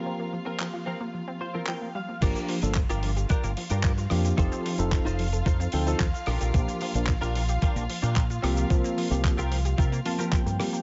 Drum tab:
CC |----------------|x---------------|----------------|----------------|
HH |----------------|xxoxxxoxxxoxxxox|xxoxxxoxxxoxxxox|xxoxxxoxxxoxxxox|
SH |----------------|xx-xxx-xxx-xxx-x|xx-xxx-xxx-xxx-x|xx-xxx-xxx-xxx-x|
CP |----x-------x---|----x-------x---|----x-------x---|----x-------x---|
SD |----------------|--------------r-|--------------r-|--------------r-|
BD |----------------|o---o---o---o---|o---o---o---o---|o---o---o---o---|

CC |----------------|
HH |xxoxxxoxxxoxxxox|
SH |xx-xxx-xxx-xxx-x|
CP |----x-------x---|
SD |--------------r-|
BD |o---o---o---o---|